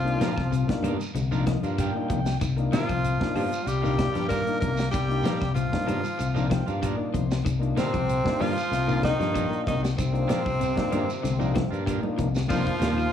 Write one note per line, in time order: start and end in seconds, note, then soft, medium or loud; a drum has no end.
0.00 0.15 C2 loud
0.00 0.14 D#3 medium
0.00 0.80 F3 medium
0.00 0.80 F4 loud
0.04 0.31 A#3 medium
0.04 0.31 D4 medium
0.04 0.31 D#4 medium
0.04 0.32 F4 medium
0.04 muted clean electric guitar stroke soft
0.04 closed hi-hat soft
0.20 0.37 D#3 medium
0.20 0.45 F3 medium
0.20 0.36 A#3 medium
0.20 0.35 D4 medium
0.20 0.35 F4 medium
0.20 snare medium
0.20 closed hi-hat medium
0.20 high conga loud
0.20 shekere loud
0.36 0.63 C2 medium
0.36 muted clean electric guitar stroke medium
0.36 kick medium
0.36 snare soft
0.36 claves medium
0.36 shekere soft
0.52 0.77 C3 medium
0.52 closed hi-hat medium
0.52 shekere medium
0.67 0.93 A#3 medium
0.67 0.93 D4 medium
0.67 0.94 D#4 medium
0.67 0.94 F4 medium
0.67 muted clean electric guitar stroke soft
0.67 kick medium
0.67 snare medium
0.67 closed hi-hat soft
0.67 high conga medium
0.82 0.96 G2 medium
0.82 1.00 D#3 medium
0.82 1.09 D#3 medium
0.82 0.99 A#3 medium
0.82 0.99 D4 medium
0.82 0.99 F4 medium
0.82 closed hi-hat medium
0.82 high conga medium
0.82 low conga medium
0.82 claves medium
0.82 shekere soft
1.00 muted clean electric guitar stroke soft
1.00 closed hi-hat soft
1.00 shekere medium
1.14 1.54 C2 medium
1.14 1.28 D3 medium
1.14 muted clean electric guitar stroke soft
1.14 closed hi-hat medium
1.14 high conga medium
1.14 shekere medium
1.31 1.46 D#3 medium
1.31 1.44 F3 medium
1.31 1.57 A#3 medium
1.31 1.46 A#3 medium
1.31 1.57 D4 medium
1.31 1.46 D4 medium
1.31 1.57 D#4 medium
1.31 1.46 F4 medium
1.31 1.58 F4 medium
1.31 shekere medium
1.47 1.72 F3 medium
1.47 1.62 D#5 medium
1.47 kick medium
1.47 snare medium
1.47 closed hi-hat medium
1.47 high conga medium
1.47 claves medium
1.63 1.89 G2 medium
1.63 1.78 A#3 medium
1.63 1.78 D4 medium
1.63 1.78 F4 medium
1.63 1.77 F5 medium
1.63 closed hi-hat soft
1.63 shekere soft
1.78 1.94 D#3 medium
1.78 2.03 G3 medium
1.78 1.94 A#3 medium
1.78 1.93 D4 medium
1.78 1.93 F4 medium
1.78 2.38 G5 medium
1.78 kick medium
1.78 closed hi-hat medium
1.78 claves medium
1.78 shekere medium
1.94 2.20 A#3 loud
1.94 2.20 D4 medium
1.94 2.21 D#4 medium
1.94 2.21 F4 loud
1.94 muted clean electric guitar stroke soft
2.09 2.36 C2 medium
2.09 2.35 F3 medium
2.09 muted clean electric guitar stroke soft
2.09 kick medium
2.09 closed hi-hat medium
2.09 high conga medium
2.09 low conga medium
2.09 shekere soft
2.26 snare medium
2.26 closed hi-hat soft
2.26 shekere medium
2.41 2.67 C2 loud
2.41 2.66 D#3 medium
2.41 kick loud
2.41 closed hi-hat medium
2.41 claves medium
2.41 shekere medium
2.56 2.83 A#3 medium
2.56 2.83 D4 medium
2.56 2.83 D#4 medium
2.56 2.84 F4 medium
2.56 muted clean electric guitar stroke soft
2.56 closed hi-hat soft
2.72 2.85 D3 medium
2.72 2.89 D#3 medium
2.72 3.32 F3 medium
2.72 2.88 A#3 medium
2.72 2.88 D4 medium
2.72 3.32 F4 loud
2.72 2.88 F4 medium
2.72 snare medium
2.72 closed hi-hat medium
2.72 high conga loud
2.72 low conga medium
2.72 shekere medium
2.88 3.15 C2 medium
2.88 3.13 F3 medium
2.88 muted clean electric guitar stroke soft
2.88 kick medium
2.88 closed hi-hat soft
2.88 claves medium
2.88 shekere soft
3.04 closed hi-hat medium
3.04 shekere loud
3.19 3.46 A#3 medium
3.19 3.46 D4 medium
3.19 3.46 D#4 medium
3.19 3.46 F4 medium
3.19 muted clean electric guitar stroke soft
3.19 kick medium
3.19 snare medium
3.19 high conga medium
3.34 3.49 G2 medium
3.34 3.66 F3 medium
3.34 3.61 G3 medium
3.34 3.51 A#3 medium
3.34 3.51 D4 medium
3.34 3.50 F4 medium
3.34 3.69 F4 medium
3.34 open hi-hat medium
3.34 high conga medium
3.34 low conga medium
3.34 claves medium
3.34 shekere soft
3.52 muted clean electric guitar stroke soft
3.52 closed hi-hat soft
3.52 shekere medium
3.65 4.06 C2 medium
3.65 4.27 G3 medium
3.65 4.28 G4 loud
3.65 muted clean electric guitar stroke soft
3.65 closed hi-hat medium
3.65 shekere medium
3.82 3.96 D#3 medium
3.82 4.09 D#3 medium
3.82 3.96 A#3 medium
3.82 4.09 A#3 medium
3.82 3.96 D4 medium
3.82 4.09 D4 medium
3.82 4.09 D#4 medium
3.82 3.96 F4 medium
3.82 4.10 F4 medium
3.82 shekere medium
3.98 kick medium
3.98 snare medium
3.98 closed hi-hat soft
3.98 high conga medium
3.98 claves medium
4.13 4.41 G2 medium
4.13 4.27 F3 medium
4.13 4.29 A#3 soft
4.13 4.28 D4 soft
4.13 4.28 F4 medium
4.13 snare soft
4.13 closed hi-hat soft
4.17 shekere soft
4.28 4.46 D#3 medium
4.28 4.55 G3 medium
4.28 4.58 A#3 medium
4.28 4.44 D4 medium
4.28 4.44 F4 medium
4.28 4.59 A#4 loud
4.28 kick medium
4.28 closed hi-hat medium
4.28 claves medium
4.28 shekere medium
4.45 4.72 A#3 medium
4.45 4.73 D4 medium
4.45 4.73 D#4 medium
4.45 4.73 F4 medium
4.45 muted clean electric guitar stroke soft
4.45 closed hi-hat soft
4.60 4.88 C2 medium
4.60 4.90 A#3 medium
4.60 4.90 A#4 loud
4.60 muted clean electric guitar stroke soft
4.60 kick medium
4.60 closed hi-hat medium
4.60 high conga medium
4.60 low conga medium
4.60 shekere soft
4.77 snare medium
4.77 closed hi-hat soft
4.77 shekere medium
4.91 5.19 C2 medium
4.91 5.18 D#3 medium
4.91 5.52 G3 medium
4.91 5.51 G4 medium
4.91 kick loud
4.91 closed hi-hat medium
4.91 claves medium
4.91 shekere medium
5.08 5.35 A#3 medium
5.08 5.35 D4 medium
5.08 5.35 D#4 medium
5.08 5.36 F4 medium
5.08 muted clean electric guitar stroke soft
5.08 closed hi-hat soft
5.23 5.41 D#3 medium
5.23 5.49 F3 medium
5.23 5.40 A#3 medium
5.23 5.40 D4 medium
5.23 5.40 F4 medium
5.23 snare medium
5.23 closed hi-hat medium
5.23 high conga loud
5.23 shekere medium
5.40 5.67 C2 medium
5.40 muted clean electric guitar stroke soft
5.40 kick medium
5.40 snare soft
5.40 claves medium
5.40 shekere soft
5.54 5.81 C3 medium
5.54 6.78 F3 medium
5.54 6.78 F4 medium
5.54 closed hi-hat medium
5.54 shekere medium
5.72 5.98 A#3 medium
5.72 5.99 D4 medium
5.72 5.99 D#4 medium
5.72 5.99 F4 medium
5.72 muted clean electric guitar stroke soft
5.72 kick medium
5.72 snare medium
5.72 closed hi-hat soft
5.72 high conga medium
5.86 6.02 G2 medium
5.86 6.03 D#3 medium
5.86 6.13 D#3 medium
5.86 6.02 A#3 medium
5.86 6.02 D4 medium
5.86 6.04 F4 medium
5.86 closed hi-hat medium
5.86 high conga medium
5.86 low conga medium
5.86 claves medium
5.86 shekere soft
6.04 muted clean electric guitar stroke soft
6.04 closed hi-hat soft
6.04 shekere medium
6.18 6.59 C2 loud
6.18 muted clean electric guitar stroke soft
6.18 closed hi-hat medium
6.18 shekere medium
6.34 6.48 D#3 medium
6.34 6.48 F3 medium
6.34 6.49 A#3 medium
6.34 6.61 A#3 medium
6.34 6.48 D4 medium
6.34 6.62 D4 medium
6.34 6.62 D#4 medium
6.34 6.49 F4 medium
6.34 6.62 F4 medium
6.34 shekere loud
6.50 6.76 F3 medium
6.50 6.66 G5 medium
6.50 kick medium
6.50 snare medium
6.50 closed hi-hat soft
6.50 high conga medium
6.50 claves medium
6.66 6.94 G2 medium
6.66 6.81 A#3 soft
6.66 6.81 D4 medium
6.66 6.82 F4 medium
6.66 6.82 F5 medium
6.66 closed hi-hat soft
6.66 shekere soft
6.82 6.99 D#3 medium
6.82 7.07 G3 medium
6.82 6.98 A#3 medium
6.82 6.97 D4 medium
6.82 6.97 F4 medium
6.82 7.12 D5 medium
6.82 kick medium
6.82 closed hi-hat medium
6.82 claves medium
6.82 shekere medium
6.97 7.24 A#3 loud
6.97 7.24 D4 medium
6.97 7.24 D#4 medium
6.97 7.25 F4 loud
6.97 muted clean electric guitar stroke soft
7.13 7.40 C2 medium
7.13 7.39 F3 medium
7.13 7.43 C5 medium
7.13 muted clean electric guitar stroke soft
7.13 kick medium
7.13 closed hi-hat medium
7.13 low conga medium
7.13 shekere soft
7.31 snare medium
7.31 closed hi-hat soft
7.31 shekere medium
7.45 7.72 C2 loud
7.45 7.70 D#3 medium
7.45 kick medium
7.45 closed hi-hat medium
7.45 claves medium
7.45 shekere medium
7.59 7.87 A#3 medium
7.59 7.87 D4 medium
7.59 7.87 D#4 medium
7.59 7.88 F4 medium
7.59 muted clean electric guitar stroke soft
7.59 closed hi-hat soft
7.76 8.44 C3 medium
7.76 7.90 D3 medium
7.76 7.93 D#3 medium
7.76 7.93 A#3 medium
7.76 8.43 C4 loud
7.76 7.93 D4 medium
7.76 7.92 F4 loud
7.76 snare medium
7.76 closed hi-hat medium
7.76 high conga loud
7.76 shekere loud
7.93 8.20 C2 medium
7.93 8.19 F3 medium
7.93 muted clean electric guitar stroke soft
7.93 kick medium
7.93 closed hi-hat soft
7.93 high conga medium
7.93 claves medium
7.93 shekere soft
8.09 closed hi-hat medium
8.09 shekere medium
8.24 8.50 A#3 medium
8.24 8.51 D4 medium
8.24 8.51 D#4 medium
8.24 8.51 F4 medium
8.24 muted clean electric guitar stroke soft
8.24 kick medium
8.24 snare medium
8.24 high conga medium
8.40 8.54 G2 medium
8.40 8.56 D#3 medium
8.40 9.04 F3 medium
8.40 8.66 G3 medium
8.40 8.55 A#3 medium
8.40 8.55 D4 medium
8.40 8.55 F4 medium
8.40 9.04 F4 loud
8.40 open hi-hat medium
8.40 high conga medium
8.40 low conga medium
8.40 claves medium
8.40 shekere soft
8.56 muted clean electric guitar stroke soft
8.56 snare soft
8.56 closed hi-hat soft
8.56 shekere medium
8.71 9.11 C2 medium
8.71 muted clean electric guitar stroke soft
8.71 snare soft
8.71 closed hi-hat medium
8.71 shekere medium
8.87 9.01 D#3 medium
8.87 9.14 D#3 medium
8.87 9.13 A#3 medium
8.87 9.02 A#3 medium
8.87 9.14 D4 medium
8.87 9.02 D4 medium
8.87 9.14 D#4 medium
8.87 9.14 F4 medium
8.87 shekere loud
9.02 9.63 D#3 medium
9.02 9.63 D#4 loud
9.02 muted clean electric guitar stroke soft
9.02 kick medium
9.02 snare medium
9.02 closed hi-hat soft
9.02 high conga medium
9.02 claves medium
9.18 9.46 G2 medium
9.18 9.32 F3 medium
9.18 9.32 A#3 soft
9.18 9.33 D4 medium
9.18 9.33 F4 medium
9.18 snare soft
9.18 closed hi-hat soft
9.18 shekere soft
9.34 9.51 D#3 medium
9.34 9.60 F3 medium
9.34 9.49 A#3 medium
9.34 9.49 D4 medium
9.34 9.48 F4 medium
9.34 kick medium
9.34 closed hi-hat medium
9.34 claves medium
9.34 shekere medium
9.50 9.76 A#3 medium
9.50 9.76 D4 medium
9.50 9.77 D#4 medium
9.50 9.77 F4 medium
9.50 muted clean electric guitar stroke soft
9.50 closed hi-hat soft
9.64 9.93 C2 loud
9.64 muted clean electric guitar stroke soft
9.64 kick medium
9.64 low conga medium
9.68 9.82 D#3 medium
9.68 9.82 D#4 loud
9.68 closed hi-hat medium
9.68 shekere soft
9.83 9.95 G3 medium
9.83 snare medium
9.83 closed hi-hat soft
9.83 shekere medium
9.98 10.24 C2 loud
9.98 11.83 C3 medium
9.98 10.23 D#3 medium
9.98 11.83 C4 loud
9.98 kick medium
9.98 closed hi-hat medium
9.98 claves medium
9.98 shekere medium
10.12 10.39 A#3 medium
10.12 10.39 D4 medium
10.12 10.40 D#4 medium
10.12 10.40 F4 medium
10.12 muted clean electric guitar stroke soft
10.12 closed hi-hat soft
10.27 10.45 D#3 medium
10.27 10.54 F3 medium
10.27 10.44 A#3 medium
10.27 10.43 D4 medium
10.27 10.43 F4 medium
10.27 snare medium
10.27 closed hi-hat medium
10.27 high conga medium
10.27 shekere medium
10.44 10.72 C2 medium
10.44 muted clean electric guitar stroke soft
10.44 kick medium
10.44 claves medium
10.44 shekere soft
10.60 10.86 C3 medium
10.60 closed hi-hat medium
10.60 shekere loud
10.76 11.02 A#3 medium
10.76 11.02 D4 medium
10.76 11.03 D#4 medium
10.76 11.03 F4 loud
10.76 muted clean electric guitar stroke soft
10.76 kick medium
10.76 snare medium
10.76 closed hi-hat soft
10.76 high conga medium
10.91 11.06 G2 medium
10.91 11.08 D#3 medium
10.91 11.17 D#3 medium
10.91 11.08 A#3 medium
10.91 11.08 D4 medium
10.91 11.07 F4 medium
10.91 closed hi-hat medium
10.91 high conga medium
10.91 low conga medium
10.91 claves medium
10.91 shekere soft
11.08 muted clean electric guitar stroke soft
11.08 closed hi-hat soft
11.08 shekere medium
11.23 11.63 C2 medium
11.23 11.37 D3 medium
11.23 muted clean electric guitar stroke soft
11.23 snare soft
11.23 closed hi-hat medium
11.23 high conga medium
11.23 shekere medium
11.38 11.53 D#3 medium
11.38 11.52 F3 medium
11.38 11.65 A#3 medium
11.38 11.53 A#3 medium
11.38 11.65 D4 medium
11.38 11.54 D4 medium
11.38 11.65 D#4 medium
11.38 11.66 F4 medium
11.38 muted clean electric guitar stroke medium
11.38 shekere loud
11.54 11.80 F3 medium
11.54 muted clean electric guitar stroke soft
11.54 kick medium
11.54 snare medium
11.54 closed hi-hat medium
11.54 high conga medium
11.54 claves medium
11.71 11.98 G2 medium
11.71 11.85 A#3 soft
11.71 11.85 D4 medium
11.71 11.86 F4 medium
11.71 closed hi-hat soft
11.71 shekere soft
11.86 12.03 D#3 medium
11.86 12.11 G3 medium
11.86 12.02 A#3 medium
11.86 12.02 D4 medium
11.86 12.01 F4 medium
11.86 kick medium
11.86 closed hi-hat medium
11.86 claves medium
11.86 shekere medium
12.02 12.28 A#3 medium
12.02 12.28 D4 medium
12.02 12.29 D#4 medium
12.02 12.29 F4 loud
12.02 muted clean electric guitar stroke soft
12.02 high conga medium
12.18 12.44 C2 medium
12.18 12.43 F3 medium
12.18 muted clean electric guitar stroke soft
12.18 kick medium
12.18 closed hi-hat medium
12.18 low conga medium
12.18 shekere soft
12.35 snare medium
12.35 closed hi-hat soft
12.35 low conga medium
12.35 shekere medium
12.47 12.63 C2 medium
12.47 12.66 D#3 medium
12.47 12.62 F3 medium
12.47 13.13 F3 loud
12.47 12.75 A#3 medium
12.47 12.64 A#3 medium
12.47 12.75 D4 medium
12.47 12.64 D4 medium
12.47 12.75 D#4 medium
12.47 13.13 F4 loud
12.47 12.76 F4 medium
12.47 12.64 F4 medium
12.47 kick medium
12.47 snare soft
12.47 crash medium
12.47 claves medium
12.47 shekere medium
12.65 12.91 D#3 medium
12.65 muted clean electric guitar stroke soft
12.65 kick medium
12.65 closed hi-hat soft
12.79 13.06 D#2 medium
12.79 12.96 D#3 medium
12.79 12.96 A#3 medium
12.79 12.95 D4 medium
12.79 12.95 F4 medium
12.79 snare medium
12.79 closed hi-hat medium
12.79 high conga loud
12.79 low conga medium
12.79 shekere loud
12.96 muted clean electric guitar stroke soft
12.96 claves medium
12.96 shekere soft